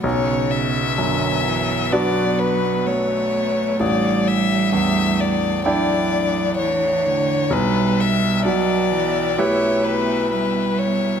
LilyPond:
<<
  \new Staff \with { instrumentName = "Violin" } { \time 4/4 \key b \minor \tempo 4 = 64 cis''8 e''4. d''8 b'8 cis''4 | d''8 e''8 e''8 d''8 d''4 cis''4 | b'8 e''8 d''4 cis''8 b'8 b'8 cis''8 | }
  \new Staff \with { instrumentName = "String section" } { \time 4/4 \key b \minor <b fis' b'>1 | <a d' g''>1 | <b e'' g''>1 | }
  \new Staff \with { instrumentName = "Grand piano" } { \time 4/4 \key b \minor b,,4 fis,4 <b d' fis'>2 | a,,4 e,4 <d' e' g''>2 | b,,4 b,4 <e' g' b'>2 | }
  \new Staff \with { instrumentName = "Cello" } { \clef bass \time 4/4 \key b \minor cis4 d8 e8 fis4 a4 | g2 fis4 e8 d8 | g4 fis8 e8 a4 g4 | }
>>